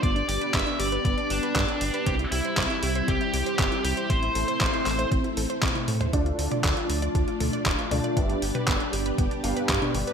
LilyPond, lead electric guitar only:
\new Staff \with { instrumentName = "Lead electric guitar" } { \time 4/4 \key d \dorian \tempo 4 = 118 d''8 d''8 e''8 d''4 d'4. | g'8 e'4. g'4. g'8 | c''2 r2 | r1 |
r1 | }